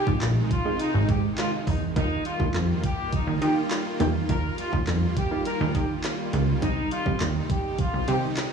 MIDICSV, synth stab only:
0, 0, Header, 1, 2, 480
1, 0, Start_track
1, 0, Key_signature, -3, "major"
1, 0, Tempo, 582524
1, 1618, Time_signature, 4, 2, 24, 8
1, 7027, End_track
2, 0, Start_track
2, 0, Title_t, "Synth stab"
2, 0, Program_c, 0, 62
2, 56, Note_on_c, 0, 56, 76
2, 56, Note_on_c, 0, 60, 73
2, 58, Note_on_c, 0, 63, 70
2, 59, Note_on_c, 0, 65, 88
2, 394, Note_off_c, 0, 56, 0
2, 395, Note_off_c, 0, 60, 0
2, 395, Note_off_c, 0, 63, 0
2, 396, Note_off_c, 0, 65, 0
2, 535, Note_on_c, 0, 56, 79
2, 537, Note_on_c, 0, 60, 75
2, 538, Note_on_c, 0, 63, 77
2, 540, Note_on_c, 0, 68, 86
2, 1212, Note_off_c, 0, 56, 0
2, 1213, Note_off_c, 0, 60, 0
2, 1214, Note_off_c, 0, 63, 0
2, 1214, Note_off_c, 0, 68, 0
2, 1615, Note_on_c, 0, 55, 78
2, 1615, Note_on_c, 0, 58, 66
2, 1617, Note_on_c, 0, 63, 70
2, 1618, Note_on_c, 0, 65, 85
2, 1869, Note_off_c, 0, 55, 0
2, 1869, Note_off_c, 0, 58, 0
2, 1871, Note_off_c, 0, 63, 0
2, 1871, Note_off_c, 0, 65, 0
2, 1975, Note_on_c, 0, 55, 82
2, 1977, Note_on_c, 0, 58, 75
2, 1978, Note_on_c, 0, 63, 74
2, 1980, Note_on_c, 0, 65, 89
2, 2652, Note_off_c, 0, 55, 0
2, 2653, Note_off_c, 0, 58, 0
2, 2653, Note_off_c, 0, 63, 0
2, 2654, Note_off_c, 0, 65, 0
2, 3294, Note_on_c, 0, 55, 89
2, 3296, Note_on_c, 0, 58, 83
2, 3297, Note_on_c, 0, 63, 83
2, 3298, Note_on_c, 0, 67, 104
2, 3465, Note_off_c, 0, 55, 0
2, 3465, Note_off_c, 0, 58, 0
2, 3466, Note_off_c, 0, 63, 0
2, 3466, Note_off_c, 0, 67, 0
2, 3536, Note_on_c, 0, 55, 75
2, 3536, Note_on_c, 0, 58, 69
2, 3538, Note_on_c, 0, 63, 67
2, 3539, Note_on_c, 0, 65, 88
2, 3790, Note_off_c, 0, 55, 0
2, 3790, Note_off_c, 0, 58, 0
2, 3791, Note_off_c, 0, 63, 0
2, 3791, Note_off_c, 0, 65, 0
2, 3893, Note_on_c, 0, 55, 82
2, 3894, Note_on_c, 0, 58, 73
2, 3897, Note_on_c, 0, 63, 72
2, 3898, Note_on_c, 0, 65, 90
2, 4233, Note_off_c, 0, 55, 0
2, 4234, Note_off_c, 0, 58, 0
2, 4235, Note_off_c, 0, 63, 0
2, 4235, Note_off_c, 0, 65, 0
2, 4375, Note_on_c, 0, 55, 81
2, 4376, Note_on_c, 0, 58, 75
2, 4378, Note_on_c, 0, 63, 75
2, 4378, Note_on_c, 0, 65, 89
2, 5052, Note_off_c, 0, 55, 0
2, 5052, Note_off_c, 0, 58, 0
2, 5053, Note_off_c, 0, 63, 0
2, 5053, Note_off_c, 0, 65, 0
2, 5454, Note_on_c, 0, 55, 75
2, 5455, Note_on_c, 0, 60, 68
2, 5457, Note_on_c, 0, 63, 71
2, 5458, Note_on_c, 0, 67, 87
2, 5709, Note_off_c, 0, 55, 0
2, 5710, Note_off_c, 0, 60, 0
2, 5710, Note_off_c, 0, 63, 0
2, 5711, Note_off_c, 0, 67, 0
2, 5815, Note_on_c, 0, 55, 83
2, 5817, Note_on_c, 0, 60, 75
2, 5819, Note_on_c, 0, 63, 73
2, 5819, Note_on_c, 0, 67, 86
2, 6492, Note_off_c, 0, 55, 0
2, 6493, Note_off_c, 0, 60, 0
2, 6494, Note_off_c, 0, 63, 0
2, 6494, Note_off_c, 0, 67, 0
2, 7027, End_track
0, 0, End_of_file